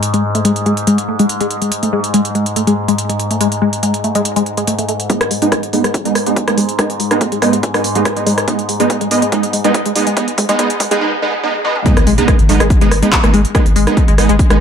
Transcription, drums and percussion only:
0.03 closed hi-hat
0.14 closed hi-hat
0.35 closed hi-hat
0.45 closed hi-hat
0.56 closed hi-hat
0.66 closed hi-hat
0.77 closed hi-hat
0.87 closed hi-hat
0.98 closed hi-hat
1.19 closed hi-hat
1.29 closed hi-hat
1.41 closed hi-hat
1.51 closed hi-hat
1.62 closed hi-hat
1.72 closed hi-hat
1.83 closed hi-hat
2.04 closed hi-hat
2.14 closed hi-hat
2.25 closed hi-hat
2.35 closed hi-hat
2.46 closed hi-hat
2.56 closed hi-hat
2.67 closed hi-hat
2.88 closed hi-hat
2.98 closed hi-hat
3.10 closed hi-hat
3.20 closed hi-hat
3.31 closed hi-hat
3.41 closed hi-hat
3.52 closed hi-hat
3.73 closed hi-hat
3.83 closed hi-hat
3.94 closed hi-hat
4.04 closed hi-hat
4.15 closed hi-hat
4.25 closed hi-hat
4.36 closed hi-hat
4.46 closed hi-hat
4.57 closed hi-hat
4.67 closed hi-hat
4.79 closed hi-hat
4.89 closed hi-hat
5.00 closed hi-hat
5.10 kick, closed hi-hat
5.21 cross-stick, closed hi-hat
5.31 open hi-hat
5.42 closed hi-hat
5.52 kick, cross-stick, closed hi-hat
5.63 closed hi-hat
5.73 open hi-hat
5.84 cross-stick, closed hi-hat
5.94 kick, closed hi-hat
6.05 closed hi-hat
6.15 cross-stick, open hi-hat
6.26 closed hi-hat
6.36 kick, closed hi-hat
6.48 cross-stick, closed hi-hat
6.58 open hi-hat
6.69 closed hi-hat
6.79 kick, cross-stick, closed hi-hat
6.90 closed hi-hat
7.00 open hi-hat
7.11 cross-stick, closed hi-hat
7.21 kick, closed hi-hat
7.32 closed hi-hat
7.42 kick, cross-stick, open hi-hat
7.53 closed hi-hat
7.63 kick, closed hi-hat
7.74 cross-stick, open hi-hat
7.84 open hi-hat
7.95 closed hi-hat
8.05 kick, cross-stick, closed hi-hat
8.17 closed hi-hat
8.27 open hi-hat
8.38 cross-stick, closed hi-hat
8.48 kick, closed hi-hat
8.59 closed hi-hat
8.69 open hi-hat
8.80 closed hi-hat
8.90 kick, closed hi-hat
9.01 closed hi-hat
9.11 open hi-hat
9.22 closed hi-hat
9.32 kick, closed hi-hat
9.43 closed hi-hat
9.53 open hi-hat
9.64 closed hi-hat
9.74 kick, closed hi-hat
9.86 closed hi-hat
9.96 open hi-hat
10.07 closed hi-hat
10.17 kick, closed hi-hat
10.28 closed hi-hat
10.38 kick, open hi-hat
10.49 closed hi-hat
10.59 kick, closed hi-hat
10.70 closed hi-hat
10.80 kick, open hi-hat
10.91 closed hi-hat
11.65 high tom
11.76 mid tom
11.86 kick, closed hi-hat
11.97 cross-stick, closed hi-hat
12.07 open hi-hat
12.18 closed hi-hat
12.28 kick, cross-stick, closed hi-hat
12.39 closed hi-hat
12.49 open hi-hat
12.60 cross-stick, closed hi-hat
12.70 kick, closed hi-hat
12.81 closed hi-hat
12.91 cross-stick, open hi-hat
13.03 closed hi-hat
13.12 kick, clap, closed hi-hat
13.24 cross-stick, closed hi-hat
13.34 open hi-hat
13.45 closed hi-hat
13.55 kick, cross-stick, closed hi-hat
13.66 closed hi-hat
13.76 open hi-hat
13.87 cross-stick, closed hi-hat
13.97 kick, closed hi-hat
14.08 closed hi-hat
14.18 cross-stick, open hi-hat
14.29 closed hi-hat
14.39 kick, closed hi-hat
14.50 cross-stick, closed hi-hat

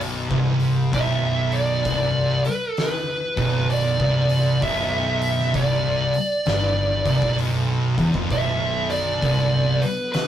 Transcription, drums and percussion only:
0.01 open hi-hat
0.31 kick
0.60 open hi-hat
0.93 kick, open hi-hat
1.52 open hi-hat
1.85 kick, open hi-hat
2.45 open hi-hat
2.77 snare, open hi-hat
3.37 kick, open hi-hat
3.70 open hi-hat
4.00 kick
4.29 open hi-hat
4.62 kick, open hi-hat
5.22 open hi-hat
5.39 snare
5.54 kick, open hi-hat
6.14 open hi-hat
6.46 snare, open hi-hat
7.05 kick, open hi-hat
7.22 kick
7.39 open hi-hat
7.98 kick, open hi-hat
8.14 kick
8.31 kick, open hi-hat
8.90 open hi-hat
9.22 kick, open hi-hat
9.82 open hi-hat
10.14 snare, open hi-hat

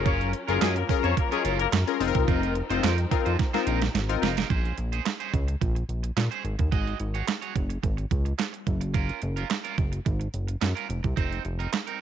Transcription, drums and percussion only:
0.06 kick, closed hi-hat
0.21 closed hi-hat
0.33 closed hi-hat
0.49 closed hi-hat
0.62 snare, clap, closed hi-hat
0.76 closed hi-hat
0.89 kick, open hi-hat
1.04 closed hi-hat
1.17 kick, closed hi-hat
1.32 closed hi-hat
1.45 closed hi-hat
1.60 closed hi-hat
1.73 snare, clap, closed hi-hat
1.88 closed hi-hat
2.01 open hi-hat
2.15 kick, closed hi-hat
2.28 kick, closed hi-hat
2.43 closed hi-hat
2.55 closed hi-hat
2.70 closed hi-hat
2.84 snare, clap, closed hi-hat
2.98 closed hi-hat
3.11 kick, closed hi-hat
3.26 closed hi-hat
3.39 kick, snare, closed hi-hat
3.54 snare, closed hi-hat
3.67 closed hi-hat
3.82 snare, closed hi-hat
3.95 snare, closed hi-hat
4.09 closed hi-hat
4.23 snare, open hi-hat
4.37 snare, closed hi-hat
4.50 kick, closed hi-hat
4.65 closed hi-hat
4.78 closed hi-hat
4.93 closed hi-hat
5.06 snare, clap, closed hi-hat
5.20 closed hi-hat
5.34 kick, closed hi-hat
5.48 closed hi-hat
5.61 kick, closed hi-hat
5.76 closed hi-hat
5.89 closed hi-hat
6.04 closed hi-hat
6.17 snare, clap, closed hi-hat
6.32 closed hi-hat
6.45 closed hi-hat
6.59 kick, closed hi-hat
6.72 kick, closed hi-hat
6.87 closed hi-hat
7.00 closed hi-hat
7.15 closed hi-hat
7.28 snare, clap, closed hi-hat
7.42 closed hi-hat
7.56 kick, closed hi-hat
7.70 closed hi-hat
7.83 kick, closed hi-hat
7.98 closed hi-hat
8.11 kick, closed hi-hat
8.26 closed hi-hat
8.39 snare, clap, closed hi-hat
8.54 closed hi-hat
8.67 kick, closed hi-hat
8.81 closed hi-hat
8.94 kick, closed hi-hat
9.09 closed hi-hat
9.22 closed hi-hat
9.37 closed hi-hat
9.50 snare, clap, closed hi-hat
9.65 closed hi-hat
9.78 kick, closed hi-hat
9.93 closed hi-hat
10.06 kick, closed hi-hat
10.21 closed hi-hat
10.34 closed hi-hat
10.48 closed hi-hat
10.62 snare, clap, closed hi-hat
10.77 closed hi-hat
10.90 closed hi-hat
11.04 kick, closed hi-hat
11.17 kick, closed hi-hat
11.32 closed hi-hat
11.45 closed hi-hat
11.60 closed hi-hat
11.73 snare, clap, closed hi-hat
11.87 closed hi-hat

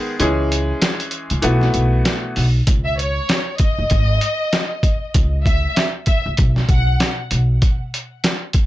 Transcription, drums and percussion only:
0.20 closed hi-hat
0.52 closed hi-hat
0.82 snare, closed hi-hat
1.00 closed hi-hat
1.11 closed hi-hat
1.30 closed hi-hat
1.42 closed hi-hat
1.61 snare
1.74 closed hi-hat
2.05 snare, closed hi-hat
2.36 open hi-hat
2.67 kick, closed hi-hat
2.99 closed hi-hat
3.29 snare, closed hi-hat
3.58 kick, closed hi-hat
3.90 kick, closed hi-hat
4.21 closed hi-hat
4.53 snare, closed hi-hat
4.83 kick, closed hi-hat
5.14 kick, closed hi-hat
5.46 kick, closed hi-hat
5.76 snare, closed hi-hat
6.06 kick, closed hi-hat
6.37 kick, closed hi-hat
6.56 snare
6.69 kick, closed hi-hat
7.00 snare, closed hi-hat
7.31 closed hi-hat
7.62 kick, closed hi-hat
7.94 closed hi-hat
8.24 snare, closed hi-hat
8.53 kick, closed hi-hat

